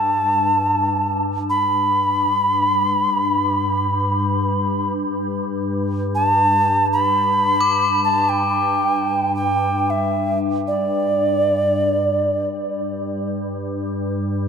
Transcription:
Already playing: G2 A5 E6
1.50 B5
6.15 A5
6.93 B5
7.61 D6
8.04 A5
8.29 G5
9.35 G5
9.90 E5
10.68 D5
11.78 G2

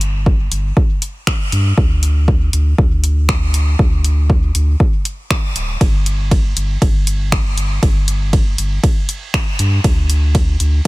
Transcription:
Already playing: G1
0.01 closed hi-hat
0.26 kick
0.52 G1, closed hi-hat
0.77 kick
1.02 closed hi-hat
1.27 finger snap, kick
1.52 G2, closed hi-hat
1.78 D2, kick
2.03 closed hi-hat
2.28 kick
2.53 D2, closed hi-hat
2.78 D2, kick
3.04 closed hi-hat
3.29 finger snap, kick
3.54 closed hi-hat
3.79 D2, kick
4.04 closed hi-hat
4.30 kick
4.55 D2, closed hi-hat
4.80 kick
5.05 closed hi-hat
5.31 finger snap, kick
5.56 D1, closed hi-hat
5.81 G1, kick, ride
6.06 closed hi-hat
6.31 kick, ride
6.57 G1, closed hi-hat
6.82 G1, kick, ride
7.07 closed hi-hat
7.32 finger snap, kick, ride
7.58 closed hi-hat
7.83 G1, kick, ride
8.08 closed hi-hat
8.33 kick, ride
8.58 G1, closed hi-hat
8.84 kick, ride
9.09 closed hi-hat
9.34 finger snap, kick, ride
9.59 G2, closed hi-hat
9.84 D2, kick, ride
10.10 closed hi-hat
10.35 kick, ride
10.60 D2, closed hi-hat

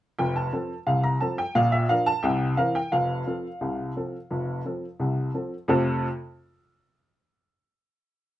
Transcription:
0.19 F1 F2 G5
0.36 A5
0.53 F3 C4 A4
0.87 C2 C3 F5
1.03 A#5
1.20 F3 C4 A4 A5
1.38 G5
1.55 A#1 A#2 F5
1.72 E5
1.89 F3 D4 A#4 F5
2.06 A5
2.23 C2 C3 G5
2.57 E3 C4 A#4 F5
2.75 G5
2.92 F1 F2 F5
3.27 F3 C4 A4
3.61 C2 C3
3.96 F3 C4 A4
4.31 F1 F2
4.65 F3 C4 A4
4.99 C2 C3
5.34 F3 C4 A4
5.68 F2 C3 A3 C4 F4 A4

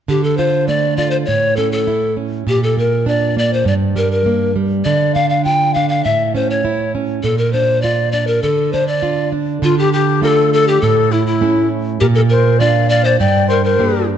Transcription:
0.08 D3 G4
0.24 A4
0.37 F4 C5
0.68 A3 D5
0.97 F4 D5
1.11 C5
1.26 A2 C#5
1.57 C#4 A4
1.72 A4
1.87 E4
2.17 C#4
2.47 A#2 G4
2.64 A4
2.77 A#3 A#4
3.06 D4 D5
3.37 A#3 D5
3.53 C5
3.65 G2 D5
3.96 G3 A#4
4.11 A#4
4.26 A#3
4.56 G3
4.85 D3 D5
5.14 D4 F5
5.29 F5
5.44 F4 G5
5.74 D4 F5
5.89 F5
6.04 A2 E5
6.35 C#4 C5
6.50 C#5
6.65 E4
6.95 C#4
7.23 A#2 A4
7.38 A#4
7.53 D4 C5
7.82 F4 D5
8.12 D4 D5
8.27 A#4
8.43 D3 A4
8.73 D4 C5
8.87 D5
9.03 F4
9.32 D4
9.62 D3 F4
9.78 G4
9.93 G4
10.22 A3 D4 F4 A4 A#4
10.28 A4
10.53 A4
10.68 G4
10.82 A2 A4
11.12 E4
11.26 E4
11.41 A3 C#4 E4
12.00 A#2 G4 A#4
12.14 A4 A#4
12.30 A#4 C5
12.60 A#3 D4 F4 D5 F5
12.89 D5 F5
13.04 C5 D5
13.20 G2 D5 G5
13.48 A#4 C5
13.64 A#4 C5
13.79 A#3 D4 G4

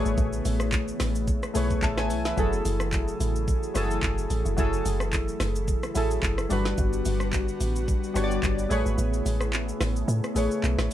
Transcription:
Already playing: C#3 E3 A3 B3 E4 G#4 B4 C#5
0.05 G#1, shaker
0.18 A1, kick, shaker
0.33 shaker
0.45 A1, open hi-hat, shaker
0.60 cross-stick, shaker
0.72 kick, clap, shaker
0.88 shaker
1.00 A1, cross-stick, snare, open hi-hat, shaker
1.15 shaker
1.28 kick, shaker
1.43 cross-stick, shaker
1.54 B1 A3 G#4 B4 C#5, open hi-hat, shaker
1.70 kick, shaker
1.82 A1 E5 A5, kick, clap, shaker
1.98 C#5 G#5, cross-stick, snare, shaker
2.10 B1, open hi-hat, shaker
2.25 B4 E5, snare, shaker
2.36 F#1 C#3 F#3 A3 E4 G#4 A4, kick, shaker
2.53 shaker
2.65 F#1, open hi-hat, shaker
2.80 cross-stick, shaker
2.93 kick, clap, shaker
3.08 shaker
3.20 A1, open hi-hat, shaker
3.36 shaker
3.48 kick, shaker
3.63 shaker
3.74 F#1 F#3 E4 G#4 A4, cross-stick, open hi-hat, shaker
3.91 shaker
4.03 F#1, kick, clap, shaker
4.18 shaker
4.30 A1, open hi-hat, shaker
4.45 F#1, shaker
4.57 F#1 F#3 E4 G#4 A4, kick, shaker
4.73 shaker
4.85 F#1, open hi-hat, shaker
5.00 cross-stick, shaker
5.13 kick, clap, shaker
5.28 shaker
5.40 F#1, cross-stick, snare, open hi-hat, shaker
5.56 shaker
5.68 kick, shaker
5.83 cross-stick, shaker
5.94 A1 F#3 E4 G#4 A4, open hi-hat, shaker
6.11 shaker
6.23 F#1, kick, clap, shaker
6.38 cross-stick, shaker
6.49 G1 D3 G3 B3 D4 F#4 B4, open hi-hat, shaker
6.65 snare, shaker
6.78 G1, kick, shaker
6.93 shaker
7.05 G1, open hi-hat, shaker
7.20 cross-stick, shaker
7.33 kick, clap, shaker
7.48 shaker
7.61 A1, open hi-hat, shaker
7.76 shaker
7.88 kick, shaker
8.04 shaker
8.14 G1 G3 D4 F#4 C#5, cross-stick, open hi-hat, shaker
8.24 D5
8.31 shaker
8.43 G1, kick, clap, shaker
8.59 shaker
8.69 A1 C#3 A3 E4 G#4 B4 C#5, open hi-hat, shaker
8.86 G#1, shaker
8.98 A1, shaker
9.13 shaker
9.26 A1, open hi-hat, shaker
9.41 cross-stick, shaker
9.53 clap, shaker
9.69 shaker
9.81 A1, cross-stick, snare, open hi-hat, shaker
9.96 shaker
10.08 A2, shaker
10.24 cross-stick, shaker
10.35 A1 A3 G#4 B4 C#5, open hi-hat, shaker
10.51 shaker
10.64 B1, clap, shaker
10.78 A1, cross-stick, snare, shaker

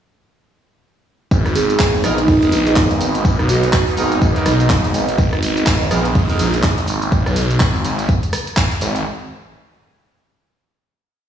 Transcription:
1.31 G#1 G#2 A#3 B3 D#4, kick, tambourine
1.46 cross-stick, snare, closed hi-hat, tambourine
1.55 G#4, open hi-hat, tambourine
1.70 closed hi-hat, tambourine
1.79 G#1, kick, snare, clap, tambourine
1.95 tambourine
2.04 A#1 B3 D#4 G#4 A#4, cross-stick, open hi-hat, tambourine
2.18 D#4, closed hi-hat, tambourine
2.28 D#4, kick, open hi-hat, tambourine
2.42 B3 D#4 G#4 A#4, snare, closed hi-hat, tambourine
2.52 A#1, open hi-hat, tambourine
2.67 closed hi-hat, tambourine
2.76 kick, snare, clap, tambourine
2.91 G#1, closed hi-hat, tambourine
3.01 open hi-hat, tambourine
3.15 closed hi-hat, tambourine
3.25 kick, tambourine
3.39 B1, cross-stick, closed hi-hat, tambourine
3.49 F#4, open hi-hat, tambourine
3.63 snare, closed hi-hat, tambourine
3.73 kick, snare, clap, tambourine
3.88 closed hi-hat, tambourine
3.97 G#1 B3 D#4 G#4 A#4, open hi-hat, tambourine
4.12 snare, closed hi-hat, tambourine
4.22 kick, tambourine
4.36 B3 D#4 G#4 A#4, snare, closed hi-hat, tambourine
4.45 B1, cross-stick, snare, open hi-hat, tambourine
4.60 closed hi-hat, tambourine
4.70 kick, snare, clap, tambourine
4.84 G#1, closed hi-hat, tambourine
4.94 open hi-hat, tambourine
5.09 G#1, closed hi-hat, tambourine
5.18 G#1, kick, tambourine
5.33 cross-stick, snare, closed hi-hat, tambourine
5.43 open hi-hat, tambourine
5.57 closed hi-hat, tambourine
5.67 G#1, kick, snare, clap, tambourine
5.82 tambourine
5.91 A#1 B3 D#4 G#4 A#4, cross-stick, open hi-hat, tambourine
6.05 closed hi-hat, tambourine
6.15 kick, open hi-hat, tambourine
6.29 B3 D#4 G#4 A#4, snare, closed hi-hat, tambourine
6.39 A#1, open hi-hat, tambourine
6.54 closed hi-hat, tambourine
6.63 kick, snare, clap, tambourine
6.78 G#1, closed hi-hat, tambourine
6.87 open hi-hat, tambourine
7.02 closed hi-hat, tambourine
7.12 kick, tambourine
7.26 B1, cross-stick, closed hi-hat, tambourine
7.36 open hi-hat, tambourine
7.50 closed hi-hat, tambourine
7.60 G#1, kick, clap, tambourine
7.75 tambourine
7.85 G#1, open hi-hat, tambourine
7.99 closed hi-hat, tambourine
8.09 kick, tambourine
8.23 closed hi-hat, tambourine
8.33 cross-stick, open hi-hat, tambourine
8.47 closed hi-hat, tambourine
8.57 kick, clap, tambourine
8.71 closed hi-hat, tambourine
8.81 G#1, open hi-hat, tambourine
8.96 closed hi-hat, tambourine

